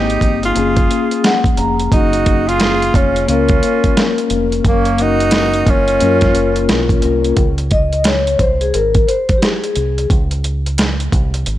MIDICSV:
0, 0, Header, 1, 6, 480
1, 0, Start_track
1, 0, Key_signature, -5, "major"
1, 0, Tempo, 681818
1, 1352, Time_signature, 4, 2, 24, 8
1, 8156, End_track
2, 0, Start_track
2, 0, Title_t, "Vibraphone"
2, 0, Program_c, 0, 11
2, 0, Note_on_c, 0, 58, 64
2, 0, Note_on_c, 0, 60, 58
2, 0, Note_on_c, 0, 63, 59
2, 0, Note_on_c, 0, 79, 68
2, 359, Note_off_c, 0, 58, 0
2, 365, Note_off_c, 0, 60, 0
2, 371, Note_off_c, 0, 63, 0
2, 372, Note_on_c, 0, 58, 63
2, 378, Note_off_c, 0, 79, 0
2, 385, Note_on_c, 0, 61, 55
2, 397, Note_on_c, 0, 77, 55
2, 410, Note_on_c, 0, 68, 69
2, 872, Note_on_c, 0, 78, 68
2, 1095, Note_off_c, 0, 78, 0
2, 1109, Note_on_c, 0, 82, 74
2, 1333, Note_off_c, 0, 82, 0
2, 2273, Note_off_c, 0, 58, 0
2, 2280, Note_off_c, 0, 61, 0
2, 2286, Note_off_c, 0, 77, 0
2, 2292, Note_off_c, 0, 68, 0
2, 2295, Note_on_c, 0, 58, 65
2, 2309, Note_on_c, 0, 61, 58
2, 2321, Note_on_c, 0, 77, 59
2, 2334, Note_on_c, 0, 70, 67
2, 4195, Note_off_c, 0, 58, 0
2, 4202, Note_off_c, 0, 61, 0
2, 4208, Note_off_c, 0, 77, 0
2, 4215, Note_off_c, 0, 70, 0
2, 4223, Note_on_c, 0, 58, 60
2, 4230, Note_on_c, 0, 61, 54
2, 4237, Note_on_c, 0, 65, 54
2, 4245, Note_on_c, 0, 70, 64
2, 4933, Note_off_c, 0, 58, 0
2, 4939, Note_off_c, 0, 61, 0
2, 4941, Note_on_c, 0, 58, 55
2, 4945, Note_off_c, 0, 65, 0
2, 4947, Note_on_c, 0, 61, 52
2, 4951, Note_off_c, 0, 70, 0
2, 4954, Note_on_c, 0, 65, 51
2, 4959, Note_on_c, 0, 70, 61
2, 5187, Note_off_c, 0, 58, 0
2, 5189, Note_off_c, 0, 61, 0
2, 5193, Note_off_c, 0, 65, 0
2, 5195, Note_off_c, 0, 70, 0
2, 5434, Note_on_c, 0, 75, 99
2, 5656, Note_off_c, 0, 75, 0
2, 5672, Note_on_c, 0, 73, 92
2, 5909, Note_on_c, 0, 72, 96
2, 5919, Note_off_c, 0, 73, 0
2, 6062, Note_on_c, 0, 68, 76
2, 6064, Note_off_c, 0, 72, 0
2, 6102, Note_off_c, 0, 68, 0
2, 6153, Note_on_c, 0, 70, 80
2, 6376, Note_off_c, 0, 70, 0
2, 6389, Note_on_c, 0, 72, 85
2, 6579, Note_off_c, 0, 72, 0
2, 6602, Note_on_c, 0, 67, 53
2, 6635, Note_off_c, 0, 67, 0
2, 6637, Note_on_c, 0, 68, 73
2, 7086, Note_off_c, 0, 68, 0
2, 8156, End_track
3, 0, Start_track
3, 0, Title_t, "Flute"
3, 0, Program_c, 1, 73
3, 0, Note_on_c, 1, 67, 72
3, 301, Note_off_c, 1, 67, 0
3, 305, Note_on_c, 1, 68, 70
3, 1086, Note_off_c, 1, 68, 0
3, 1351, Note_on_c, 1, 66, 88
3, 1739, Note_on_c, 1, 68, 95
3, 1750, Note_off_c, 1, 66, 0
3, 2076, Note_on_c, 1, 65, 74
3, 2087, Note_off_c, 1, 68, 0
3, 2314, Note_off_c, 1, 65, 0
3, 2318, Note_on_c, 1, 65, 76
3, 3007, Note_off_c, 1, 65, 0
3, 3289, Note_on_c, 1, 61, 77
3, 3529, Note_on_c, 1, 66, 90
3, 3539, Note_off_c, 1, 61, 0
3, 4005, Note_on_c, 1, 65, 83
3, 4016, Note_off_c, 1, 66, 0
3, 4958, Note_off_c, 1, 65, 0
3, 8156, End_track
4, 0, Start_track
4, 0, Title_t, "Tenor saxophone"
4, 0, Program_c, 2, 66
4, 0, Note_on_c, 2, 63, 89
4, 306, Note_off_c, 2, 63, 0
4, 316, Note_on_c, 2, 65, 83
4, 1091, Note_off_c, 2, 65, 0
4, 1359, Note_on_c, 2, 63, 100
4, 1750, Note_on_c, 2, 65, 106
4, 1761, Note_off_c, 2, 63, 0
4, 2081, Note_on_c, 2, 61, 89
4, 2092, Note_off_c, 2, 65, 0
4, 2316, Note_off_c, 2, 61, 0
4, 2320, Note_on_c, 2, 61, 86
4, 3007, Note_off_c, 2, 61, 0
4, 3295, Note_on_c, 2, 58, 93
4, 3536, Note_on_c, 2, 63, 113
4, 3546, Note_off_c, 2, 58, 0
4, 4013, Note_on_c, 2, 61, 98
4, 4023, Note_off_c, 2, 63, 0
4, 4962, Note_off_c, 2, 61, 0
4, 8156, End_track
5, 0, Start_track
5, 0, Title_t, "Fingered electric bass"
5, 0, Program_c, 3, 33
5, 0, Note_on_c, 3, 32, 98
5, 124, Note_off_c, 3, 32, 0
5, 150, Note_on_c, 3, 31, 82
5, 370, Note_off_c, 3, 31, 0
5, 395, Note_on_c, 3, 30, 93
5, 612, Note_off_c, 3, 30, 0
5, 1113, Note_on_c, 3, 29, 94
5, 1331, Note_off_c, 3, 29, 0
5, 1352, Note_on_c, 3, 30, 92
5, 2044, Note_off_c, 3, 30, 0
5, 2073, Note_on_c, 3, 29, 82
5, 2291, Note_off_c, 3, 29, 0
5, 2311, Note_on_c, 3, 37, 95
5, 2530, Note_off_c, 3, 37, 0
5, 3030, Note_on_c, 3, 29, 88
5, 3250, Note_off_c, 3, 29, 0
5, 3273, Note_on_c, 3, 30, 106
5, 3964, Note_off_c, 3, 30, 0
5, 3991, Note_on_c, 3, 30, 81
5, 4210, Note_off_c, 3, 30, 0
5, 4237, Note_on_c, 3, 42, 93
5, 4453, Note_off_c, 3, 42, 0
5, 4475, Note_on_c, 3, 30, 86
5, 4692, Note_off_c, 3, 30, 0
5, 4718, Note_on_c, 3, 35, 75
5, 4934, Note_off_c, 3, 35, 0
5, 4961, Note_on_c, 3, 36, 82
5, 5175, Note_off_c, 3, 36, 0
5, 5187, Note_on_c, 3, 37, 98
5, 5881, Note_off_c, 3, 37, 0
5, 5912, Note_on_c, 3, 36, 81
5, 6131, Note_off_c, 3, 36, 0
5, 6155, Note_on_c, 3, 32, 78
5, 6372, Note_off_c, 3, 32, 0
5, 6874, Note_on_c, 3, 36, 78
5, 7092, Note_off_c, 3, 36, 0
5, 7110, Note_on_c, 3, 37, 99
5, 7803, Note_off_c, 3, 37, 0
5, 7832, Note_on_c, 3, 36, 85
5, 8050, Note_off_c, 3, 36, 0
5, 8072, Note_on_c, 3, 32, 84
5, 8156, Note_off_c, 3, 32, 0
5, 8156, End_track
6, 0, Start_track
6, 0, Title_t, "Drums"
6, 69, Note_on_c, 9, 42, 51
6, 139, Note_off_c, 9, 42, 0
6, 149, Note_on_c, 9, 36, 89
6, 155, Note_on_c, 9, 42, 72
6, 220, Note_off_c, 9, 36, 0
6, 225, Note_off_c, 9, 42, 0
6, 304, Note_on_c, 9, 42, 52
6, 374, Note_off_c, 9, 42, 0
6, 391, Note_on_c, 9, 42, 69
6, 462, Note_off_c, 9, 42, 0
6, 538, Note_on_c, 9, 42, 51
6, 541, Note_on_c, 9, 36, 87
6, 609, Note_off_c, 9, 42, 0
6, 611, Note_off_c, 9, 36, 0
6, 638, Note_on_c, 9, 42, 74
6, 708, Note_off_c, 9, 42, 0
6, 784, Note_on_c, 9, 42, 49
6, 854, Note_off_c, 9, 42, 0
6, 874, Note_on_c, 9, 42, 76
6, 876, Note_on_c, 9, 38, 104
6, 945, Note_off_c, 9, 42, 0
6, 947, Note_off_c, 9, 38, 0
6, 1015, Note_on_c, 9, 36, 94
6, 1025, Note_on_c, 9, 42, 46
6, 1086, Note_off_c, 9, 36, 0
6, 1095, Note_off_c, 9, 42, 0
6, 1108, Note_on_c, 9, 42, 67
6, 1178, Note_off_c, 9, 42, 0
6, 1264, Note_on_c, 9, 42, 46
6, 1334, Note_off_c, 9, 42, 0
6, 1350, Note_on_c, 9, 36, 107
6, 1353, Note_on_c, 9, 42, 81
6, 1420, Note_off_c, 9, 36, 0
6, 1424, Note_off_c, 9, 42, 0
6, 1500, Note_on_c, 9, 42, 54
6, 1570, Note_off_c, 9, 42, 0
6, 1592, Note_on_c, 9, 42, 66
6, 1595, Note_on_c, 9, 36, 83
6, 1662, Note_off_c, 9, 42, 0
6, 1665, Note_off_c, 9, 36, 0
6, 1751, Note_on_c, 9, 42, 48
6, 1821, Note_off_c, 9, 42, 0
6, 1828, Note_on_c, 9, 42, 92
6, 1836, Note_on_c, 9, 38, 115
6, 1898, Note_off_c, 9, 42, 0
6, 1906, Note_off_c, 9, 38, 0
6, 1988, Note_on_c, 9, 42, 48
6, 2058, Note_off_c, 9, 42, 0
6, 2071, Note_on_c, 9, 36, 93
6, 2076, Note_on_c, 9, 42, 72
6, 2141, Note_off_c, 9, 36, 0
6, 2147, Note_off_c, 9, 42, 0
6, 2225, Note_on_c, 9, 42, 53
6, 2295, Note_off_c, 9, 42, 0
6, 2312, Note_on_c, 9, 42, 74
6, 2383, Note_off_c, 9, 42, 0
6, 2454, Note_on_c, 9, 42, 55
6, 2461, Note_on_c, 9, 36, 84
6, 2524, Note_off_c, 9, 42, 0
6, 2531, Note_off_c, 9, 36, 0
6, 2554, Note_on_c, 9, 42, 79
6, 2624, Note_off_c, 9, 42, 0
6, 2702, Note_on_c, 9, 42, 52
6, 2703, Note_on_c, 9, 36, 75
6, 2772, Note_off_c, 9, 42, 0
6, 2774, Note_off_c, 9, 36, 0
6, 2795, Note_on_c, 9, 42, 77
6, 2797, Note_on_c, 9, 38, 106
6, 2865, Note_off_c, 9, 42, 0
6, 2868, Note_off_c, 9, 38, 0
6, 2943, Note_on_c, 9, 42, 46
6, 3014, Note_off_c, 9, 42, 0
6, 3027, Note_on_c, 9, 42, 66
6, 3098, Note_off_c, 9, 42, 0
6, 3184, Note_on_c, 9, 42, 45
6, 3254, Note_off_c, 9, 42, 0
6, 3270, Note_on_c, 9, 36, 114
6, 3272, Note_on_c, 9, 42, 79
6, 3341, Note_off_c, 9, 36, 0
6, 3342, Note_off_c, 9, 42, 0
6, 3417, Note_on_c, 9, 42, 53
6, 3487, Note_off_c, 9, 42, 0
6, 3509, Note_on_c, 9, 42, 66
6, 3579, Note_off_c, 9, 42, 0
6, 3663, Note_on_c, 9, 42, 48
6, 3734, Note_off_c, 9, 42, 0
6, 3738, Note_on_c, 9, 42, 90
6, 3746, Note_on_c, 9, 38, 110
6, 3809, Note_off_c, 9, 42, 0
6, 3817, Note_off_c, 9, 38, 0
6, 3897, Note_on_c, 9, 42, 50
6, 3967, Note_off_c, 9, 42, 0
6, 3988, Note_on_c, 9, 36, 90
6, 3990, Note_on_c, 9, 42, 72
6, 4059, Note_off_c, 9, 36, 0
6, 4060, Note_off_c, 9, 42, 0
6, 4137, Note_on_c, 9, 42, 53
6, 4208, Note_off_c, 9, 42, 0
6, 4227, Note_on_c, 9, 42, 70
6, 4298, Note_off_c, 9, 42, 0
6, 4372, Note_on_c, 9, 42, 52
6, 4379, Note_on_c, 9, 36, 81
6, 4381, Note_on_c, 9, 38, 34
6, 4442, Note_off_c, 9, 42, 0
6, 4449, Note_off_c, 9, 36, 0
6, 4451, Note_off_c, 9, 38, 0
6, 4468, Note_on_c, 9, 42, 74
6, 4538, Note_off_c, 9, 42, 0
6, 4617, Note_on_c, 9, 42, 50
6, 4687, Note_off_c, 9, 42, 0
6, 4709, Note_on_c, 9, 42, 79
6, 4711, Note_on_c, 9, 38, 103
6, 4779, Note_off_c, 9, 42, 0
6, 4781, Note_off_c, 9, 38, 0
6, 4853, Note_on_c, 9, 36, 89
6, 4857, Note_on_c, 9, 42, 46
6, 4923, Note_off_c, 9, 36, 0
6, 4928, Note_off_c, 9, 42, 0
6, 4943, Note_on_c, 9, 42, 63
6, 5013, Note_off_c, 9, 42, 0
6, 5100, Note_on_c, 9, 42, 46
6, 5171, Note_off_c, 9, 42, 0
6, 5185, Note_on_c, 9, 42, 77
6, 5187, Note_on_c, 9, 36, 110
6, 5256, Note_off_c, 9, 42, 0
6, 5258, Note_off_c, 9, 36, 0
6, 5336, Note_on_c, 9, 42, 54
6, 5407, Note_off_c, 9, 42, 0
6, 5426, Note_on_c, 9, 42, 63
6, 5432, Note_on_c, 9, 36, 78
6, 5496, Note_off_c, 9, 42, 0
6, 5502, Note_off_c, 9, 36, 0
6, 5580, Note_on_c, 9, 42, 49
6, 5650, Note_off_c, 9, 42, 0
6, 5661, Note_on_c, 9, 42, 91
6, 5669, Note_on_c, 9, 38, 113
6, 5732, Note_off_c, 9, 42, 0
6, 5740, Note_off_c, 9, 38, 0
6, 5823, Note_on_c, 9, 42, 51
6, 5893, Note_off_c, 9, 42, 0
6, 5908, Note_on_c, 9, 36, 89
6, 5909, Note_on_c, 9, 42, 76
6, 5978, Note_off_c, 9, 36, 0
6, 5979, Note_off_c, 9, 42, 0
6, 6061, Note_on_c, 9, 42, 51
6, 6132, Note_off_c, 9, 42, 0
6, 6152, Note_on_c, 9, 42, 71
6, 6223, Note_off_c, 9, 42, 0
6, 6297, Note_on_c, 9, 42, 53
6, 6301, Note_on_c, 9, 36, 85
6, 6368, Note_off_c, 9, 42, 0
6, 6371, Note_off_c, 9, 36, 0
6, 6396, Note_on_c, 9, 42, 75
6, 6466, Note_off_c, 9, 42, 0
6, 6539, Note_on_c, 9, 42, 52
6, 6543, Note_on_c, 9, 36, 75
6, 6609, Note_off_c, 9, 42, 0
6, 6613, Note_off_c, 9, 36, 0
6, 6634, Note_on_c, 9, 42, 73
6, 6636, Note_on_c, 9, 38, 101
6, 6704, Note_off_c, 9, 42, 0
6, 6706, Note_off_c, 9, 38, 0
6, 6784, Note_on_c, 9, 42, 48
6, 6854, Note_off_c, 9, 42, 0
6, 6868, Note_on_c, 9, 42, 66
6, 6938, Note_off_c, 9, 42, 0
6, 7026, Note_on_c, 9, 42, 45
6, 7096, Note_off_c, 9, 42, 0
6, 7110, Note_on_c, 9, 36, 111
6, 7114, Note_on_c, 9, 42, 79
6, 7181, Note_off_c, 9, 36, 0
6, 7184, Note_off_c, 9, 42, 0
6, 7259, Note_on_c, 9, 42, 55
6, 7329, Note_off_c, 9, 42, 0
6, 7352, Note_on_c, 9, 42, 64
6, 7422, Note_off_c, 9, 42, 0
6, 7507, Note_on_c, 9, 42, 49
6, 7578, Note_off_c, 9, 42, 0
6, 7589, Note_on_c, 9, 42, 96
6, 7597, Note_on_c, 9, 38, 111
6, 7660, Note_off_c, 9, 42, 0
6, 7668, Note_off_c, 9, 38, 0
6, 7744, Note_on_c, 9, 42, 49
6, 7815, Note_off_c, 9, 42, 0
6, 7831, Note_on_c, 9, 36, 87
6, 7835, Note_on_c, 9, 42, 76
6, 7902, Note_off_c, 9, 36, 0
6, 7905, Note_off_c, 9, 42, 0
6, 7983, Note_on_c, 9, 42, 54
6, 8053, Note_off_c, 9, 42, 0
6, 8069, Note_on_c, 9, 42, 68
6, 8139, Note_off_c, 9, 42, 0
6, 8156, End_track
0, 0, End_of_file